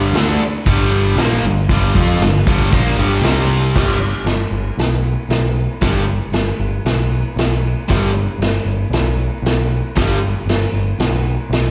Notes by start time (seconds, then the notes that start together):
Already playing: G1 G2 D3 G3
0.12 D2, snare, crash, shaker
0.17 D3 A3 D4
0.39 muted picked electric bass stroke, muted overdriven electric guitar stroke, shaker
0.55 shaker
0.65 G1 G2 D3 G3, kick, crash, shaker
0.93 shaker
1.07 shaker
1.15 A#1 A#2, snare, crash, shaker
1.20 F3 A#3
1.41 G1 G2 D3, shaker
1.69 G1 G2 D3, kick, crash, shaker
1.73 G3
1.95 F2 F3 C4 F4, kick, shaker
2.08 shaker
2.17 G1, shaker
2.22 G2 D3, snare, crash
2.46 G1 G2 D3 G3, kick, shaker
2.72 A#1 A#2 F3 A#3, kick, crash, shaker
2.96 G1 G2 D3
3.00 G3, shaker
3.15 shaker
3.21 C2 C3 G3, snare, crash
3.25 C4, shaker
3.50 shaker
3.65 shaker
3.74 G1 G2 D3 G3, kick, snare, crash, shaker
4.04 shaker
4.25 G1, snare, crash, shaker
4.51 G1, shaker
4.77 B1, snare, crash, shaker
5.04 shaker
5.29 B1, snare, crash, shaker
5.56 shaker
5.81 G1 G2 D3 G3, kick, snare, crash, shaker
6.07 shaker
6.32 G1, snare, crash, shaker
6.59 G1, shaker
6.85 B1, snare, crash, shaker
7.10 shaker
7.36 B1, snare, crash, shaker
7.63 shaker
7.89 G1 G2 D3 G3, kick, snare, crash, shaker
8.15 shaker
8.38 G1, crash, shaker
8.43 snare
8.65 G1
8.70 shaker
8.90 B1, snare, crash
8.95 shaker
9.19 shaker
9.42 B1, crash, shaker
9.46 snare
9.71 shaker
9.96 G1 G2 D3 G3, kick, snare, crash, shaker
10.46 G1, snare, crash, shaker
10.72 G1, shaker
10.99 B1, snare, crash, shaker
11.25 shaker
11.49 B1, snare, crash, shaker